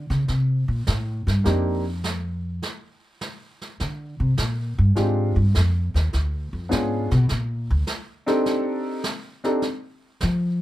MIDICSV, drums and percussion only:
0, 0, Header, 1, 2, 480
1, 0, Start_track
1, 0, Tempo, 583658
1, 1197, Time_signature, 4, 2, 24, 8
1, 8731, End_track
2, 0, Start_track
2, 0, Title_t, "Drums"
2, 86, Note_on_c, 9, 38, 34
2, 169, Note_off_c, 9, 38, 0
2, 232, Note_on_c, 9, 25, 40
2, 232, Note_on_c, 9, 38, 44
2, 314, Note_off_c, 9, 38, 0
2, 714, Note_on_c, 9, 38, 63
2, 796, Note_off_c, 9, 38, 0
2, 1051, Note_on_c, 9, 38, 42
2, 1133, Note_off_c, 9, 38, 0
2, 1195, Note_off_c, 9, 25, 0
2, 1195, Note_on_c, 9, 25, 51
2, 1195, Note_on_c, 9, 38, 41
2, 1277, Note_off_c, 9, 38, 0
2, 1677, Note_on_c, 9, 38, 64
2, 1759, Note_off_c, 9, 38, 0
2, 2158, Note_off_c, 9, 25, 0
2, 2158, Note_on_c, 9, 25, 54
2, 2158, Note_on_c, 9, 38, 44
2, 2240, Note_off_c, 9, 38, 0
2, 2642, Note_on_c, 9, 38, 54
2, 2724, Note_off_c, 9, 38, 0
2, 2973, Note_on_c, 9, 38, 37
2, 3055, Note_off_c, 9, 38, 0
2, 3124, Note_off_c, 9, 25, 0
2, 3124, Note_on_c, 9, 25, 44
2, 3124, Note_on_c, 9, 38, 44
2, 3207, Note_off_c, 9, 38, 0
2, 3598, Note_on_c, 9, 38, 62
2, 3680, Note_off_c, 9, 38, 0
2, 4081, Note_off_c, 9, 25, 0
2, 4081, Note_on_c, 9, 25, 43
2, 4081, Note_on_c, 9, 38, 41
2, 4164, Note_off_c, 9, 38, 0
2, 4562, Note_on_c, 9, 38, 60
2, 4644, Note_off_c, 9, 38, 0
2, 4896, Note_on_c, 9, 38, 45
2, 4979, Note_off_c, 9, 38, 0
2, 5042, Note_off_c, 9, 25, 0
2, 5042, Note_on_c, 9, 25, 43
2, 5042, Note_on_c, 9, 38, 43
2, 5124, Note_off_c, 9, 38, 0
2, 5521, Note_on_c, 9, 38, 56
2, 5603, Note_off_c, 9, 38, 0
2, 5848, Note_on_c, 9, 38, 34
2, 5930, Note_off_c, 9, 38, 0
2, 5995, Note_off_c, 9, 25, 0
2, 5995, Note_on_c, 9, 25, 43
2, 5995, Note_on_c, 9, 38, 45
2, 6077, Note_off_c, 9, 38, 0
2, 6473, Note_on_c, 9, 38, 61
2, 6555, Note_off_c, 9, 38, 0
2, 6805, Note_on_c, 9, 38, 41
2, 6887, Note_off_c, 9, 38, 0
2, 6956, Note_off_c, 9, 25, 0
2, 6956, Note_on_c, 9, 25, 57
2, 6956, Note_on_c, 9, 38, 46
2, 7039, Note_off_c, 9, 38, 0
2, 7433, Note_on_c, 9, 38, 67
2, 7515, Note_off_c, 9, 38, 0
2, 7765, Note_on_c, 9, 38, 38
2, 7847, Note_off_c, 9, 38, 0
2, 7912, Note_off_c, 9, 25, 0
2, 7912, Note_on_c, 9, 25, 41
2, 7912, Note_on_c, 9, 38, 44
2, 7994, Note_off_c, 9, 38, 0
2, 8393, Note_on_c, 9, 38, 67
2, 8475, Note_off_c, 9, 38, 0
2, 8731, Note_off_c, 9, 25, 0
2, 8731, End_track
0, 0, End_of_file